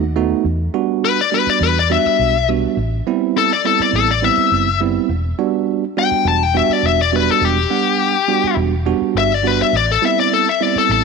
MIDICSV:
0, 0, Header, 1, 5, 480
1, 0, Start_track
1, 0, Key_signature, 1, "minor"
1, 0, Tempo, 580271
1, 370, Time_signature, 4, 2, 24, 8
1, 9132, End_track
2, 0, Start_track
2, 0, Title_t, "Lead electric guitar"
2, 0, Program_c, 0, 29
2, 866, Note_on_c, 0, 71, 81
2, 982, Note_off_c, 0, 71, 0
2, 1000, Note_on_c, 0, 74, 76
2, 1099, Note_off_c, 0, 74, 0
2, 1111, Note_on_c, 0, 71, 88
2, 1224, Note_off_c, 0, 71, 0
2, 1238, Note_on_c, 0, 74, 68
2, 1338, Note_off_c, 0, 74, 0
2, 1348, Note_on_c, 0, 71, 84
2, 1463, Note_off_c, 0, 71, 0
2, 1483, Note_on_c, 0, 74, 74
2, 1580, Note_off_c, 0, 74, 0
2, 1592, Note_on_c, 0, 76, 90
2, 2048, Note_off_c, 0, 76, 0
2, 2793, Note_on_c, 0, 69, 98
2, 2906, Note_off_c, 0, 69, 0
2, 2917, Note_on_c, 0, 74, 83
2, 3018, Note_off_c, 0, 74, 0
2, 3031, Note_on_c, 0, 69, 95
2, 3145, Note_off_c, 0, 69, 0
2, 3159, Note_on_c, 0, 74, 78
2, 3259, Note_off_c, 0, 74, 0
2, 3273, Note_on_c, 0, 69, 92
2, 3386, Note_off_c, 0, 69, 0
2, 3399, Note_on_c, 0, 74, 85
2, 3510, Note_off_c, 0, 74, 0
2, 3510, Note_on_c, 0, 76, 104
2, 3967, Note_off_c, 0, 76, 0
2, 4953, Note_on_c, 0, 79, 98
2, 5176, Note_off_c, 0, 79, 0
2, 5197, Note_on_c, 0, 81, 83
2, 5320, Note_off_c, 0, 81, 0
2, 5320, Note_on_c, 0, 79, 87
2, 5419, Note_off_c, 0, 79, 0
2, 5435, Note_on_c, 0, 76, 90
2, 5566, Note_off_c, 0, 76, 0
2, 5566, Note_on_c, 0, 74, 85
2, 5662, Note_off_c, 0, 74, 0
2, 5679, Note_on_c, 0, 76, 90
2, 5789, Note_off_c, 0, 76, 0
2, 5805, Note_on_c, 0, 74, 83
2, 5902, Note_off_c, 0, 74, 0
2, 5922, Note_on_c, 0, 71, 94
2, 6030, Note_off_c, 0, 71, 0
2, 6049, Note_on_c, 0, 69, 89
2, 6162, Note_off_c, 0, 69, 0
2, 6162, Note_on_c, 0, 67, 80
2, 7078, Note_off_c, 0, 67, 0
2, 7593, Note_on_c, 0, 76, 95
2, 7728, Note_off_c, 0, 76, 0
2, 7728, Note_on_c, 0, 74, 97
2, 7836, Note_off_c, 0, 74, 0
2, 7836, Note_on_c, 0, 71, 82
2, 7946, Note_off_c, 0, 71, 0
2, 7959, Note_on_c, 0, 76, 107
2, 8057, Note_off_c, 0, 76, 0
2, 8079, Note_on_c, 0, 74, 74
2, 8188, Note_off_c, 0, 74, 0
2, 8202, Note_on_c, 0, 69, 82
2, 8299, Note_off_c, 0, 69, 0
2, 8316, Note_on_c, 0, 76, 90
2, 8426, Note_off_c, 0, 76, 0
2, 8438, Note_on_c, 0, 74, 75
2, 8537, Note_off_c, 0, 74, 0
2, 8549, Note_on_c, 0, 69, 85
2, 8662, Note_off_c, 0, 69, 0
2, 8680, Note_on_c, 0, 76, 99
2, 8788, Note_off_c, 0, 76, 0
2, 8788, Note_on_c, 0, 74, 82
2, 8902, Note_off_c, 0, 74, 0
2, 8919, Note_on_c, 0, 69, 74
2, 9017, Note_off_c, 0, 69, 0
2, 9030, Note_on_c, 0, 69, 104
2, 9132, Note_off_c, 0, 69, 0
2, 9132, End_track
3, 0, Start_track
3, 0, Title_t, "Tine electric piano"
3, 0, Program_c, 1, 4
3, 131, Note_on_c, 1, 57, 95
3, 132, Note_on_c, 1, 59, 82
3, 135, Note_on_c, 1, 63, 84
3, 135, Note_on_c, 1, 66, 99
3, 371, Note_off_c, 1, 57, 0
3, 371, Note_off_c, 1, 59, 0
3, 372, Note_off_c, 1, 63, 0
3, 373, Note_off_c, 1, 66, 0
3, 612, Note_on_c, 1, 55, 80
3, 612, Note_on_c, 1, 62, 78
3, 613, Note_on_c, 1, 59, 73
3, 614, Note_on_c, 1, 66, 103
3, 982, Note_off_c, 1, 55, 0
3, 982, Note_off_c, 1, 62, 0
3, 983, Note_off_c, 1, 59, 0
3, 983, Note_off_c, 1, 66, 0
3, 1090, Note_on_c, 1, 59, 61
3, 1090, Note_on_c, 1, 62, 59
3, 1091, Note_on_c, 1, 55, 70
3, 1092, Note_on_c, 1, 66, 63
3, 1461, Note_off_c, 1, 59, 0
3, 1461, Note_off_c, 1, 62, 0
3, 1462, Note_off_c, 1, 55, 0
3, 1462, Note_off_c, 1, 66, 0
3, 1569, Note_on_c, 1, 55, 74
3, 1570, Note_on_c, 1, 62, 66
3, 1572, Note_on_c, 1, 59, 66
3, 1572, Note_on_c, 1, 66, 79
3, 1941, Note_off_c, 1, 55, 0
3, 1941, Note_off_c, 1, 62, 0
3, 1942, Note_off_c, 1, 59, 0
3, 1943, Note_off_c, 1, 66, 0
3, 2057, Note_on_c, 1, 55, 81
3, 2057, Note_on_c, 1, 59, 72
3, 2060, Note_on_c, 1, 62, 65
3, 2061, Note_on_c, 1, 66, 80
3, 2294, Note_off_c, 1, 55, 0
3, 2294, Note_off_c, 1, 59, 0
3, 2296, Note_off_c, 1, 62, 0
3, 2296, Note_off_c, 1, 66, 0
3, 2539, Note_on_c, 1, 55, 78
3, 2539, Note_on_c, 1, 59, 77
3, 2539, Note_on_c, 1, 60, 81
3, 2543, Note_on_c, 1, 64, 102
3, 2906, Note_off_c, 1, 55, 0
3, 2906, Note_off_c, 1, 59, 0
3, 2906, Note_off_c, 1, 60, 0
3, 2908, Note_off_c, 1, 64, 0
3, 3017, Note_on_c, 1, 55, 66
3, 3018, Note_on_c, 1, 60, 59
3, 3021, Note_on_c, 1, 59, 56
3, 3022, Note_on_c, 1, 64, 76
3, 3385, Note_off_c, 1, 55, 0
3, 3386, Note_off_c, 1, 60, 0
3, 3387, Note_off_c, 1, 59, 0
3, 3388, Note_off_c, 1, 64, 0
3, 3492, Note_on_c, 1, 55, 77
3, 3493, Note_on_c, 1, 59, 75
3, 3494, Note_on_c, 1, 64, 79
3, 3495, Note_on_c, 1, 60, 70
3, 3863, Note_off_c, 1, 55, 0
3, 3863, Note_off_c, 1, 59, 0
3, 3864, Note_off_c, 1, 60, 0
3, 3864, Note_off_c, 1, 64, 0
3, 3976, Note_on_c, 1, 55, 79
3, 3978, Note_on_c, 1, 60, 66
3, 3979, Note_on_c, 1, 59, 74
3, 3979, Note_on_c, 1, 64, 91
3, 4214, Note_off_c, 1, 55, 0
3, 4215, Note_off_c, 1, 59, 0
3, 4215, Note_off_c, 1, 60, 0
3, 4216, Note_off_c, 1, 64, 0
3, 4455, Note_on_c, 1, 55, 88
3, 4457, Note_on_c, 1, 59, 81
3, 4458, Note_on_c, 1, 66, 91
3, 4459, Note_on_c, 1, 62, 83
3, 4824, Note_off_c, 1, 55, 0
3, 4825, Note_off_c, 1, 59, 0
3, 4825, Note_off_c, 1, 66, 0
3, 4826, Note_off_c, 1, 62, 0
3, 4936, Note_on_c, 1, 55, 65
3, 4937, Note_on_c, 1, 62, 65
3, 4939, Note_on_c, 1, 66, 68
3, 4940, Note_on_c, 1, 59, 62
3, 5305, Note_off_c, 1, 55, 0
3, 5305, Note_off_c, 1, 62, 0
3, 5306, Note_off_c, 1, 59, 0
3, 5306, Note_off_c, 1, 66, 0
3, 5411, Note_on_c, 1, 55, 78
3, 5412, Note_on_c, 1, 59, 77
3, 5412, Note_on_c, 1, 62, 71
3, 5415, Note_on_c, 1, 66, 95
3, 5782, Note_off_c, 1, 55, 0
3, 5782, Note_off_c, 1, 62, 0
3, 5783, Note_off_c, 1, 59, 0
3, 5784, Note_off_c, 1, 66, 0
3, 5894, Note_on_c, 1, 59, 78
3, 5895, Note_on_c, 1, 62, 70
3, 5896, Note_on_c, 1, 55, 86
3, 5897, Note_on_c, 1, 66, 87
3, 6263, Note_off_c, 1, 59, 0
3, 6264, Note_off_c, 1, 55, 0
3, 6264, Note_off_c, 1, 62, 0
3, 6265, Note_off_c, 1, 66, 0
3, 6371, Note_on_c, 1, 55, 77
3, 6372, Note_on_c, 1, 59, 68
3, 6373, Note_on_c, 1, 62, 67
3, 6375, Note_on_c, 1, 78, 80
3, 6742, Note_off_c, 1, 55, 0
3, 6742, Note_off_c, 1, 59, 0
3, 6742, Note_off_c, 1, 62, 0
3, 6744, Note_off_c, 1, 78, 0
3, 6851, Note_on_c, 1, 55, 83
3, 6851, Note_on_c, 1, 59, 62
3, 6852, Note_on_c, 1, 62, 69
3, 6856, Note_on_c, 1, 66, 91
3, 7221, Note_off_c, 1, 55, 0
3, 7221, Note_off_c, 1, 59, 0
3, 7222, Note_off_c, 1, 62, 0
3, 7224, Note_off_c, 1, 66, 0
3, 7329, Note_on_c, 1, 55, 97
3, 7329, Note_on_c, 1, 59, 74
3, 7331, Note_on_c, 1, 62, 86
3, 7331, Note_on_c, 1, 66, 104
3, 7700, Note_off_c, 1, 55, 0
3, 7700, Note_off_c, 1, 59, 0
3, 7701, Note_off_c, 1, 62, 0
3, 7701, Note_off_c, 1, 66, 0
3, 7802, Note_on_c, 1, 55, 77
3, 7806, Note_on_c, 1, 62, 68
3, 7808, Note_on_c, 1, 59, 70
3, 7808, Note_on_c, 1, 66, 88
3, 8046, Note_off_c, 1, 55, 0
3, 8047, Note_off_c, 1, 62, 0
3, 8049, Note_off_c, 1, 59, 0
3, 8049, Note_off_c, 1, 66, 0
3, 8288, Note_on_c, 1, 55, 68
3, 8288, Note_on_c, 1, 59, 68
3, 8290, Note_on_c, 1, 60, 66
3, 8291, Note_on_c, 1, 64, 85
3, 8659, Note_off_c, 1, 55, 0
3, 8659, Note_off_c, 1, 59, 0
3, 8660, Note_off_c, 1, 60, 0
3, 8660, Note_off_c, 1, 64, 0
3, 8771, Note_on_c, 1, 55, 66
3, 8771, Note_on_c, 1, 60, 58
3, 8773, Note_on_c, 1, 59, 61
3, 8773, Note_on_c, 1, 64, 73
3, 9132, Note_off_c, 1, 55, 0
3, 9132, Note_off_c, 1, 59, 0
3, 9132, Note_off_c, 1, 60, 0
3, 9132, Note_off_c, 1, 64, 0
3, 9132, End_track
4, 0, Start_track
4, 0, Title_t, "Fingered electric bass"
4, 0, Program_c, 2, 33
4, 0, Note_on_c, 2, 39, 69
4, 267, Note_off_c, 2, 39, 0
4, 368, Note_on_c, 2, 40, 91
4, 557, Note_off_c, 2, 40, 0
4, 1328, Note_on_c, 2, 40, 100
4, 1618, Note_off_c, 2, 40, 0
4, 1813, Note_on_c, 2, 35, 80
4, 2190, Note_off_c, 2, 35, 0
4, 2290, Note_on_c, 2, 33, 102
4, 2480, Note_off_c, 2, 33, 0
4, 3252, Note_on_c, 2, 33, 89
4, 3541, Note_off_c, 2, 33, 0
4, 3734, Note_on_c, 2, 30, 79
4, 4111, Note_off_c, 2, 30, 0
4, 4210, Note_on_c, 2, 28, 101
4, 4399, Note_off_c, 2, 28, 0
4, 5169, Note_on_c, 2, 28, 103
4, 5458, Note_off_c, 2, 28, 0
4, 5648, Note_on_c, 2, 28, 83
4, 6026, Note_off_c, 2, 28, 0
4, 6131, Note_on_c, 2, 28, 109
4, 6320, Note_off_c, 2, 28, 0
4, 7086, Note_on_c, 2, 28, 89
4, 7376, Note_off_c, 2, 28, 0
4, 7568, Note_on_c, 2, 31, 78
4, 7946, Note_off_c, 2, 31, 0
4, 8048, Note_on_c, 2, 33, 102
4, 8237, Note_off_c, 2, 33, 0
4, 9010, Note_on_c, 2, 33, 87
4, 9132, Note_off_c, 2, 33, 0
4, 9132, End_track
5, 0, Start_track
5, 0, Title_t, "Muted fingered electric bass strokes"
5, 1213, Note_on_c, 9, 29, 35
5, 1296, Note_off_c, 9, 29, 0
5, 1702, Note_on_c, 9, 29, 36
5, 1785, Note_off_c, 9, 29, 0
5, 3141, Note_on_c, 9, 29, 36
5, 3223, Note_off_c, 9, 29, 0
5, 3618, Note_on_c, 9, 29, 35
5, 3701, Note_off_c, 9, 29, 0
5, 5057, Note_on_c, 9, 29, 35
5, 5139, Note_off_c, 9, 29, 0
5, 5535, Note_on_c, 9, 29, 38
5, 5618, Note_off_c, 9, 29, 0
5, 6979, Note_on_c, 9, 29, 36
5, 7061, Note_off_c, 9, 29, 0
5, 7455, Note_on_c, 9, 29, 34
5, 7538, Note_off_c, 9, 29, 0
5, 8897, Note_on_c, 9, 29, 36
5, 8979, Note_off_c, 9, 29, 0
5, 9132, End_track
0, 0, End_of_file